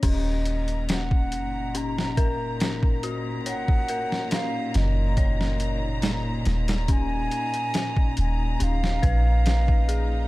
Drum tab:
CC |x---------------|----------------|----------------|
HH |x-xxx-x-x-x-x-x-|x-x-x-x-x-x-x-xx|x-xxx-x-x-x-x-x-|
SD |----o----o--o---|---oo-o--o--o-oo|----o----o--o---|
BD |o----o----o--o--|-o------o-------|o----o----o--o--|